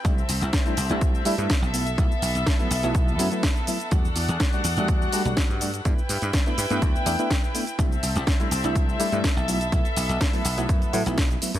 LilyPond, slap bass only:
\new Staff \with { instrumentName = "Slap bass" } { \clef bass \time 4/4 \key b \phrygian \tempo 4 = 124 c,16 r16 c,16 c,16 r8 c,16 c,8. r16 g,16 r16 b,,8. | b,,16 r16 b,,16 b,,16 r8 b,,16 b,,8. fis,16 r4 r16 | e,16 r16 e,16 e,16 r8 e,16 e,8. r16 b,,16 r16 g,8. | g,16 r16 g,16 g,16 r8 g,16 g,16 d,16 r16 e,16 r4 r16 |
c,16 r16 c,16 c,16 r8 c,16 c,8. r16 g,16 r16 b,,8. | b,,16 r16 b,,16 b,,16 r8 b,,16 b,,16 fis,16 r16 a,16 b,,8. r16 fis,16 | }